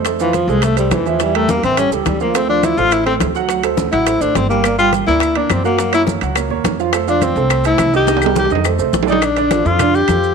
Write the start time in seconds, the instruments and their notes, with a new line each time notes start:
Already playing: upright bass F2
0.05 grand piano A3 A4 C5, high bongo, high conga, high timbale, maracas
0.20 tenor saxophone E3, grand piano F3 F4 F5, high conga, maracas
0.33 tenor saxophone F3, high bongo, high conga, high timbale, maracas
0.48 upright bass C2, tenor saxophone G#3, grand piano A3 A4 C5, high bongo, high conga, maracas
0.62 tenor saxophone A3, high bongo, high conga, high timbale, maracas
0.76 tenor saxophone G3, grand piano A3 A4 C5, high bongo, high conga, high timbale, maracas
0.91 upright bass E2, tenor saxophone E3, high bongo, low bongo, high conga, high timbale, low timbale, maracas
1.06 grand piano E3 E4 E5, tenor saxophone F3, high bongo, high conga, maracas
1.20 grand piano E3 E4 E5, tenor saxophone G3, high bongo, high timbale, maracas
1.34 grand piano G3 G4 A#4, tenor saxophone A3, high bongo, high conga, high timbale
1.49 tenor saxophone A#3, high bongo, high conga, maracas
1.63 upright bass A1, grand piano E3 E4 E5, tenor saxophone C4, high bongo, high conga, high timbale, maracas
1.77 grand piano G3 G4 A4, tenor saxophone C#4, high bongo, high conga, high timbale, maracas
1.91 upright bass C#2, tenor saxophone E3, grand piano G3 G4 A4, high bongo, high conga, maracas
2.05 upright bass D2, tenor saxophone G3, high bongo, low bongo, high conga, high timbale, low timbale, maracas
2.20 grand piano F3 F4 F5, tenor saxophone A#3, high conga, maracas
2.34 grand piano A3 A4 C5, tenor saxophone C4, high bongo, high conga, high timbale, maracas
2.49 grand piano F3 F4 F5, tenor saxophone D4, high conga
2.63 tenor saxophone E4, high bongo, high conga, high timbale, maracas
2.77 upright bass A1, grand piano A3 A4 C5, tenor saxophone F4, high bongo, high conga, maracas
2.91 tenor saxophone E4, high bongo, high conga, high timbale, maracas
3.06 grand piano A3 A4 C5, tenor saxophone C4, high bongo, high conga, high timbale
3.20 upright bass D2, high bongo, low bongo, high conga, high timbale, low timbale, maracas
3.34 grand piano F#3 F#4 F#5, high bongo, high conga, maracas
3.49 grand piano F#3 F#4 F#5, high bongo, high conga, high timbale, maracas
3.63 grand piano A3 A4 C5, high bongo, high conga, high timbale, maracas
3.77 high bongo, high conga, maracas
3.92 upright bass A1, grand piano F#3 F#4 F#5, tenor saxophone E4, high bongo, high conga, high timbale, maracas
4.06 grand piano A3 A4 C5, high bongo, high conga, high timbale, maracas
4.21 upright bass A1, grand piano A3 A4 C5, tenor saxophone D4, high bongo, high conga, maracas
4.35 upright bass G1, tenor saxophone C4, high bongo, low bongo, high conga, high timbale, low timbale, maracas
4.49 grand piano G3 G4 G5, tenor saxophone A#3, high conga, maracas
4.64 grand piano A#3 A#4 D5, high bongo, high conga, high timbale, claves, maracas
4.78 grand piano G3 G4 G5, tenor saxophone F4, high conga, maracas
4.93 high bongo, high conga, high timbale, maracas
5.07 upright bass D2, grand piano A#3 A#4 D5, tenor saxophone E4, high bongo, high conga, maracas
5.20 high bongo, high conga, high timbale, claves, maracas
5.35 grand piano A#3 A#4 D5, tenor saxophone D4, high bongo, high conga, high timbale
5.50 upright bass F#2, tenor saxophone C4, high bongo, low bongo, high conga, high timbale, claves, maracas
5.64 grand piano F#3 F#4 F#5, tenor saxophone A#3, high bongo, maracas
5.78 grand piano F#3 F#4 F#5, high bongo, high conga, high timbale, maracas
5.92 grand piano A#3 A#4 C#5, tenor saxophone E4, high bongo, high conga, high timbale, claves, maracas
6.07 high bongo, high conga, maracas
6.21 upright bass C#2, grand piano F#3 F#4 F#5, high bongo, high conga, high timbale, maracas
6.36 grand piano A#3 A#4 C#5, high bongo, high conga, high timbale, claves, maracas
6.50 upright bass D#2, grand piano A#3 A#4 C#5, high bongo, high conga
6.64 upright bass F2, high bongo, low bongo, high conga, high timbale, low timbale, maracas
6.78 grand piano F3 F4 F5, high conga, maracas
6.93 grand piano A3 A4 C5, high bongo, high conga, high timbale, claves, maracas
7.08 grand piano F3 F4 F5, tenor saxophone D4, high conga, maracas
7.21 tenor saxophone C4, high bongo, high conga, high timbale, maracas
7.36 upright bass C2, grand piano A3 A4 C5, high bongo, high conga, maracas
7.50 high bongo, high conga, high timbale, claves, maracas
7.64 grand piano A3 A4 C5, tenor saxophone E4, high bongo, high conga, high timbale, maracas
7.78 upright bass C2, high bongo, low bongo, high conga, high timbale, claves, maracas
7.93 grand piano D#3 D#4 D#5, tenor saxophone G4, high bongo, high conga, maracas
8.07 grand piano D#3 D#4 D#5, high bongo, high conga, high timbale, maracas
8.17 high timbale
8.22 grand piano G3 G4 A#4, high conga, claves, maracas
8.26 high timbale
8.35 tenor saxophone G4, high bongo, high conga, low timbale, maracas
8.45 high timbale
8.50 upright bass F2, grand piano D#3 D#4 D#5, high bongo, high conga, maracas
8.55 low timbale
8.64 grand piano A3 A4 C5, high bongo, high conga, claves, maracas
8.79 upright bass C2, grand piano A3 A4 C5, high bongo, high conga, maracas
8.93 upright bass A#1, high bongo, low bongo, high conga, maracas
9.03 grand piano D3, low timbale
9.07 grand piano D4 D5, tenor saxophone D#4, high conga, maracas
9.12 low timbale
9.22 tenor saxophone D4, high bongo, high conga, high timbale, claves, maracas
9.36 grand piano D3 D4 D5, high bongo, high conga, high timbale, maracas
9.50 grand piano F3 F4 A4, high bongo, high conga, high timbale, maracas
9.64 upright bass F2, grand piano F3 F4 A4, tenor saxophone F4, high bongo, high conga, maracas
9.79 grand piano D3 D4 D5, high bongo, high conga, low conga, high timbale, claves, maracas
9.94 tenor saxophone G4, high conga, maracas
10.08 upright bass F2, grand piano F3 F4 A4, high bongo, low bongo, high conga, high timbale, claves, maracas
10.23 high bongo, maracas